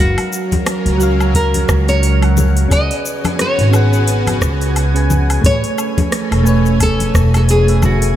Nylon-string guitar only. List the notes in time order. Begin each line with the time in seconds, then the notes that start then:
0.00 F#4
1.35 A#4
1.89 C#5
2.72 D#5
3.41 C#5
5.46 C#5
6.83 A4
7.37 A4
7.50 G#4
7.85 F#4